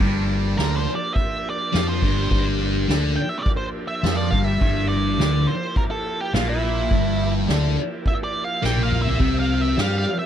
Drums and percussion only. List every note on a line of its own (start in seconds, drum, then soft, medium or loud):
0.00 kick loud
0.00 crash loud
0.29 ride medium
0.58 snare loud
0.58 ride medium
0.87 ride medium
1.15 kick loud
1.15 ride medium
1.45 ride medium
1.73 snare loud
1.73 ride medium
2.02 kick loud
2.02 ride medium
2.31 kick loud
2.31 ride medium
2.60 ride medium
2.89 snare loud
2.89 ride medium
3.18 ride medium
3.46 kick loud
3.46 ride medium
3.75 ride medium
4.04 snare loud
4.04 ride loud
4.32 kick loud
4.32 ride medium
4.61 kick loud
4.61 ride medium
4.90 ride medium
5.19 snare loud
5.19 ride medium
5.48 ride medium
5.76 kick loud
5.76 ride medium
6.05 ride medium
6.34 snare loud
6.34 ride medium
6.91 kick loud
6.91 ride medium
7.20 ride medium
7.48 snare loud
7.48 ride medium
7.77 ride medium
8.06 kick loud
8.06 ride medium
8.34 ride medium
8.64 snare medium
8.77 high tom medium
8.91 mid tom medium
9.06 floor tom medium
9.20 kick loud
9.20 ride medium
9.20 splash medium
9.49 ride medium
9.77 snare loud
9.77 ride medium
10.06 ride medium